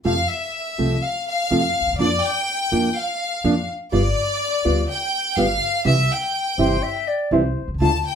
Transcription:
0.05 0.26 F2 medium
0.05 0.14 C3 medium
0.05 0.14 F3 medium
0.05 0.14 A3 medium
0.05 0.14 C4 medium
0.05 0.14 F4 medium
0.05 0.29 F5 medium
0.30 1.03 E5 medium
0.78 0.99 C2 soft
0.78 0.95 C3 medium
0.78 0.95 F3 soft
0.78 0.96 A3 medium
0.78 0.96 C4 medium
0.78 0.96 F4 medium
1.03 1.26 F5 medium
1.27 1.96 F5 medium
1.51 1.71 F2 medium
1.51 1.60 C3 medium
1.51 1.60 F3 medium
1.51 1.60 A3 medium
1.51 1.60 C4 medium
1.51 1.60 F4 medium
1.81 1.86 D2 soft
1.87 1.92 D#2 medium
1.93 1.98 E2 medium
1.99 2.19 F2 medium
1.99 2.08 F3 medium
1.99 2.08 A#3 medium
1.99 2.09 D4 medium
1.99 2.09 F4 medium
1.99 2.24 D5 medium
2.24 2.96 G5 medium
2.71 2.92 F2 medium
2.71 2.88 F3 medium
2.71 2.89 A#3 medium
2.71 2.89 D4 medium
2.71 2.89 F4 medium
2.98 3.69 F5 medium
3.44 3.65 F2 medium
3.44 3.53 F3 medium
3.44 3.53 A#3 medium
3.44 3.54 D4 medium
3.44 3.54 F4 medium
3.92 4.13 G1 medium
3.92 4.01 G3 medium
3.92 4.01 B3 medium
3.92 4.02 F4 medium
3.92 4.85 D5 loud
4.65 4.85 D2 medium
4.65 4.81 G3 medium
4.65 4.82 B3 medium
4.65 4.82 F4 medium
4.89 5.34 G5 medium
5.36 5.57 G1 medium
5.36 5.46 G3 medium
5.36 5.46 B3 medium
5.36 5.46 F4 medium
5.36 5.85 F5 medium
5.85 6.06 C2 medium
5.85 5.94 C3 medium
5.85 5.94 E3 medium
5.85 5.94 G3 medium
5.85 5.94 C4 medium
5.85 5.94 E4 medium
5.85 6.08 E5 loud
6.10 7.08 G5 medium
6.58 6.79 G1 soft
6.58 6.75 C3 medium
6.58 6.75 E3 medium
6.58 6.76 G3 medium
6.58 6.76 C4 medium
6.58 6.76 E4 medium
6.58 6.84 C5 medium
6.83 7.09 E5 medium
7.08 7.34 D5 medium
7.31 7.52 C2 medium
7.31 7.41 C3 medium
7.31 7.41 E3 medium
7.31 7.41 G3 medium
7.31 7.41 C4 medium
7.31 7.41 E4 medium
7.31 7.69 C5 medium
7.62 7.67 B1 soft
7.68 7.74 C2 medium
7.74 7.80 C#2 medium
7.80 8.01 D2 medium
7.80 7.90 D3 medium
7.80 7.90 A3 medium
7.80 7.90 D4 medium
7.80 7.90 F4 medium
7.80 8.05 A5 medium
8.06 8.15 G5 medium

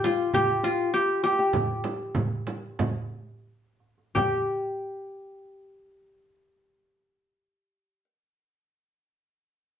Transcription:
0.00 0.34 G4 medium
0.04 0.64 F4 medium
0.04 0.33 F4 medium
0.04 darbuka tek medium
0.04 frame drum medium
0.33 0.63 G4 medium
0.33 0.93 G4 medium
0.33 darbuka dum medium
0.33 frame drum medium
0.63 0.94 F4 medium
0.63 1.99 F4 medium
0.94 1.23 G4 medium
0.94 1.24 G4 medium
1.23 3.42 G4 medium
1.23 1.31 G4 medium
1.23 darbuka ka soft
1.32 1.38 F4 medium
1.38 3.43 G4 medium
1.38 darbuka ka soft
1.53 darbuka dum medium
1.53 frame drum medium
1.69 darbuka ka soft
1.84 darbuka tek medium
1.84 frame drum medium
2.15 frame drum medium
2.15 darbuka dum medium
2.31 darbuka ka soft
2.47 darbuka tek medium
2.47 frame drum medium
2.79 frame drum medium
2.79 darbuka dum medium
3.80 darbuka ka soft
3.98 darbuka ka soft
4.15 8.04 G4 medium
4.15 darbuka dum medium
4.15 frame drum medium

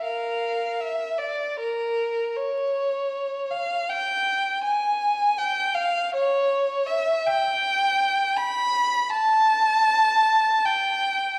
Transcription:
0.03 0.77 A#4 soft
0.03 0.80 F5 medium
0.81 1.20 E5 medium
1.18 1.59 D5 medium
1.60 2.37 A#4 medium
2.37 3.51 C#5 medium
3.50 3.89 F5 medium
3.89 4.65 G5 medium
4.63 5.35 G#5 medium
5.38 5.75 G5 medium
5.75 6.13 F5 medium
6.14 6.88 C#5 medium
6.86 7.24 E5 medium
7.27 8.37 G5 medium
8.36 9.13 B5 medium
9.10 10.65 A5 medium
10.65 11.39 G5 medium

